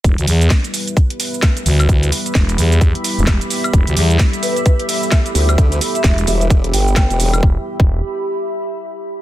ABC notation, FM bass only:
X:1
M:4/4
L:1/16
Q:"Swing 16ths" 1/4=130
K:Em
V:1 name="FM bass" clef=bass
E,,, D,, E,,2 z8 z2 D,,2 | z4 E,,,2 E,,3 z2 E,,,2 z3 | E,,, D,, E,,2 z12 | z4 E,,,2 z8 z2 |
E,,, z2 E,,,2 z8 z3 |]